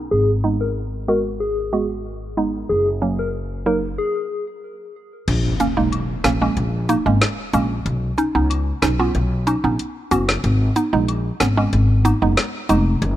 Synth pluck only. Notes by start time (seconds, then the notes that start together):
0.44 G#3 B3 D#4
1.08 G#3 B3 F#4
1.73 G#3 B3 F#4
2.37 G#3 B3 D#4
3.02 F#3 A#3 C#4
3.66 F#3 A#3 D#4
5.60 A#3 C#4
5.77 G#3 A#3 D#4
6.24 A#3 C#4
6.41 G#3 A#3 C#4
6.89 A#3 D#4
7.06 G#3 A#3 C#4
7.53 G#3 A#3 C#4
8.18 C#4 D#4
8.35 B3 C#4 D#4
8.82 C#4 D#4
8.99 B3 C#4 F4
9.47 C#4 D#4
9.64 B3 C#4 D#4
10.11 B3 C#4 F#4
10.76 B3 D#4
10.93 G#3 B3 D#4
11.40 B3 C#4
11.57 G#3 B3 C#4
12.05 B3 D#4
12.22 G#3 B3 D#4
12.69 G#3 B3 D#4